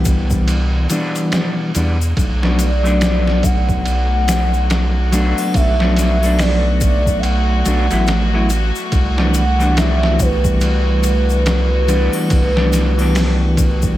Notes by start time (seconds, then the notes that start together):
Already playing: C2 B2 E3 G3 B3 D4
0.05 kick, ride, shaker
0.30 kick, shaker
0.48 ride, shaker
0.90 E3 G3 B3 D4, ride, shaker
1.15 ride, shaker
1.32 snare, ride, shaker
1.75 E2 E3 G3 B3 D4, ride, shaker
2.01 shaker
2.17 B1 A3 F#4, kick, ride, shaker
2.42 F#3 A3 B3 D4, snare
2.59 D5, ride, shaker
2.83 F#3 A3 B3, shaker
2.87 D4
3.01 snare, ride, shaker
3.27 snare
3.43 F#5, kick, ride, shaker
3.69 kick, shaker
3.85 ride, shaker
4.28 snare, ride, shaker
4.54 shaker
4.70 F#5, snare, ride, shaker
5.12 F#3 A3 B3 D4, ride, shaker
5.38 triangle, shaker
5.54 B1 E5, kick, ride, shaker
5.79 F#3 A3 B3 D4, snare
5.96 snare, ride, shaker
6.21 F#3 A3 B3, triangle, shaker
6.26 D4
6.39 D5, snare, open hi-hat, shaker
6.81 kick, ride, shaker
7.06 kick, shaker
7.20 G5, ride
7.24 F#5, shaker
7.65 B1 F#3 A3 B3 D4, ride, shaker
7.90 A1 F#3 A3 B3 E4, ride, shaker
8.07 snare, ride, shaker
8.33 F#3 A3 B3 E4
8.50 ride, shaker
8.75 shaker
8.92 C2, kick, ride, shaker
9.17 E3 G3 B3 D4, snare
9.34 F#5, ride, shaker
9.58 E3 G3 B3, shaker
9.62 D4
9.77 E5, snare, ride, shaker
10.03 snare
10.19 B4, kick, ride, shaker
10.44 kick, shaker
10.61 ride, shaker
11.03 ride, shaker
11.30 shaker
11.46 snare, ride, shaker
11.88 E3 G3 B3 D4, ride, shaker
12.13 triangle, shaker
12.30 C2, kick, ride, shaker
12.56 E3 G3 B3 D4, snare
12.73 snare, ride, shaker
12.97 E3 G3 B3, triangle, shaker
13.02 D4
13.15 snare, open hi-hat, shaker
13.57 kick, ride, shaker
13.82 kick, shaker